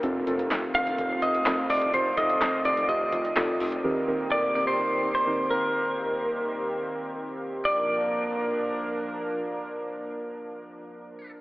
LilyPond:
<<
  \new Staff \with { instrumentName = "Clean electric guitar" } { \time 4/4 \key bes \major \tempo 4 = 126 r4. f''4 ees''4 d''8 | c''8 ees''4 d''8 ees''4. r8 | r4 d''8 d''16 c''4 c''8. bes'8~ | bes'2. r4 |
d''1~ | d''1 | }
  \new Staff \with { instrumentName = "Synth keys" } { \time 4/4 \key bes \major <c' ees' f' a'>8 <c' ees' f' a'>8 <c' ees' f' a'>8 <c' ees' f' a'>8 <c' ees' f' a'>8 <c' ees' f' c''>8 <c' ees' f' a'>8 <c' ees' f' a'>8 | <c' ees' f' c''>8 <c' ees' f' a'>8 <c' ees' f' a'>8 <c' ees' f' a'>8 <c' ees' f' g'>8 <c' ees' f' a'>8 <c' ees' f' a'>8 <c' ees' f' a'>8 | <ees c' ees' g' bes'>8 <ees c' ees' g' bes'>8 <ees c' ees' bes'>8 <ees c' ees' g' bes'>8 <ees c' ees' g' bes'>8 <ees c' ees' g' bes'>8 <ees c' ees' g' bes'>8 <ees c' ees' g' c''>8 | r1 |
r1 | r1 | }
  \new Staff \with { instrumentName = "Analog synth pad" } { \time 4/4 \key bes \major <ees a c' f'>1~ | <ees a c' f'>1 | <ees bes c' g'>1~ | <ees bes c' g'>1 |
<f bes d' bes'>1~ | <f bes d' bes'>1 | }
  \new Staff \with { instrumentName = "Analog synth bass" } { \clef bass \time 4/4 \key bes \major f,,8 f,,8. r16 f,,8 f,,8 f,,8 f,,8 f,,8 | f,,8 f,,8. r16 f,,8 f,,8 f,,8 f,,8 f,,8 | r1 | r1 |
r1 | r1 | }
  \new DrumStaff \with { instrumentName = "Drums" } \drummode { \time 4/4 <hh bd>8 hh16 hh16 <hc hh sn>8 hh16 hh16 <hh bd>8 <hh bd>16 hh16 <hc hh sn>8 hho16 hh16 | <hh bd>8 <hh bd>16 hh16 <hc hh sn>8 hh16 hh16 <hh bd>8 <hh bd>16 hh16 <hc hh sn>8 hho16 hh16 | r4 r4 r4 r4 | r4 r4 r4 r4 |
r4 r4 r4 r4 | r4 r4 r4 r4 | }
>>